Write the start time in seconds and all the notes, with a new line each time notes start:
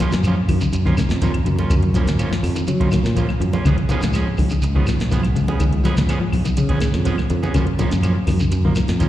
0.00 F3 A#3 C#4 F4, snare, closed hi-hat, high conga
0.12 F#2 F#3, muted clean electric guitar stroke, snare, closed hi-hat, low conga, shekere
0.23 F3 A#3 C#4, closed hi-hat, claves, shekere
0.28 F4
0.37 muted clean electric guitar stroke
0.48 F#2 D#3, kick, open hi-hat, high conga, claves, shekere
0.61 C#3, muted clean electric guitar stroke, closed hi-hat, shekere
0.73 F#2, muted clean electric guitar stroke, closed hi-hat, shekere
0.85 D#3 F3 A#3 C#4 F4, kick, snare, low conga
0.97 C#3, muted clean electric guitar stroke, snare, closed hi-hat, claves, shekere
1.09 F2, snare, closed hi-hat, shekere
1.22 D#3 F3 A#3 C#4 F4, kick, closed hi-hat, high conga, shekere
1.34 muted clean electric guitar stroke, closed hi-hat, claves
1.46 F#2 C#3, muted clean electric guitar stroke, closed hi-hat, shekere
1.59 A#3 C#4 F4, high conga, shekere
1.70 F#2, muted clean electric guitar stroke, kick, closed hi-hat, low conga, claves, shekere
1.82 muted clean electric guitar stroke, kick, closed hi-hat
1.94 F3 A#3 C#4, snare, closed hi-hat, high conga, shekere
2.06 F#2, muted clean electric guitar stroke, snare, closed hi-hat, low conga, shekere
2.19 F3 A#3 C#4 F4, closed hi-hat, claves, shekere
2.31 F3, muted fingered electric bass stroke, muted clean electric guitar stroke, snare
2.43 F2, open hi-hat, high conga, claves, shekere
2.56 D#3, muted clean electric guitar stroke, closed hi-hat, shekere
2.67 C#3 F#3, muted clean electric guitar stroke, closed hi-hat, shekere
2.80 F3 A#3 C#4 F4, kick, closed hi-hat, low conga
2.91 D#3, snare, closed hi-hat, claves, shekere
3.03 A#2, snare, shekere
3.16 F3 A#3 C#4 F4, kick, closed hi-hat, high conga, shekere
3.29 muted clean electric guitar stroke, snare, claves
3.40 F#2 F3, muted clean electric guitar stroke, closed hi-hat, high conga, shekere
3.53 A#3 C#4 F4, high conga, shekere
3.65 C#2 C#3 F3 B3 C#4 G#4, kick, closed hi-hat, low conga, claves, shekere
3.78 muted clean electric guitar stroke, kick, closed hi-hat
3.89 D#3 F3 B3 C#4 G#4, muted fingered electric bass stroke, closed hi-hat, high conga, shekere
4.01 C#2 F3, muted clean electric guitar stroke, snare, closed hi-hat, shekere
4.13 F3 C#4 G#4, snare, closed hi-hat, claves, shekere
4.27 muted clean electric guitar stroke
4.37 C#2 D#3, kick, open hi-hat, high conga, claves, shekere
4.50 C#3, muted clean electric guitar stroke, closed hi-hat, shekere
4.62 C#2, muted clean electric guitar stroke, closed hi-hat, shekere
4.75 D#3 F3 B3 C#4 G#4, kick, low conga
4.86 F3, muted clean electric guitar stroke, snare, closed hi-hat, claves, shekere
4.99 B1, snare, closed hi-hat, shekere
5.11 D#3 F3 B3 G#4, muted clean electric guitar stroke, kick, closed hi-hat, high conga, shekere
5.23 muted clean electric guitar stroke, snare, closed hi-hat, claves
5.35 C#2 C#3, muted clean electric guitar stroke, closed hi-hat, shekere
5.48 B3 C#4 G#4, high conga, shekere
5.60 C#2 D#3, kick, closed hi-hat, low conga, claves, shekere
5.73 muted clean electric guitar stroke, kick, closed hi-hat
5.84 F3 B3 C#4 G#4, snare, closed hi-hat, high conga, shekere
5.97 C#2, muted clean electric guitar stroke, snare, closed hi-hat, high conga, low conga, shekere
6.09 F3 B3 C#4 G#4, snare, closed hi-hat, claves, shekere
6.21 F3, muted clean electric guitar stroke, muted fingered electric bass stroke
6.33 B1, kick, open hi-hat, high conga, claves, shekere
6.45 D#3, muted clean electric guitar stroke, closed hi-hat, shekere
6.57 C#3, muted clean electric guitar stroke, closed hi-hat, shekere
6.69 F3 B3 C#4 G#4, kick, closed hi-hat, low conga
6.80 D#3, snare, closed hi-hat, claves, shekere
6.94 F2, snare, shekere
7.05 F3 B3 C#4 G#4, kick, closed hi-hat, high conga, shekere
7.18 muted clean electric guitar stroke, snare, claves
7.30 F2 F3, muted clean electric guitar stroke, closed hi-hat, high conga, shekere
7.43 B3 C#4 G#4, high conga, shekere
7.54 F#2 C#3 F3 A#3 C#4, kick, closed hi-hat, low conga, claves, shekere
7.67 muted clean electric guitar stroke, kick, closed hi-hat
7.79 F3 A#3 C#4, muted fingered electric bass stroke, closed hi-hat, high conga, shekere
7.91 F#2 F#3, muted clean electric guitar stroke, snare, closed hi-hat, shekere
8.03 F3 A#3 C#4, closed hi-hat, claves, shekere
8.15 muted clean electric guitar stroke
8.27 F#2 D#3, kick, snare, open hi-hat, high conga, claves, shekere
8.39 C#3, muted clean electric guitar stroke, closed hi-hat, shekere
8.51 F#2, muted clean electric guitar stroke, closed hi-hat, shekere
8.64 D#3 F3 A#3, kick, low conga
8.75 F3, muted clean electric guitar stroke, snare, closed hi-hat, claves, shekere
8.88 F2, snare, closed hi-hat, shekere
9.00 D#3 F3 A#3 C#4, kick, closed hi-hat, high conga, shekere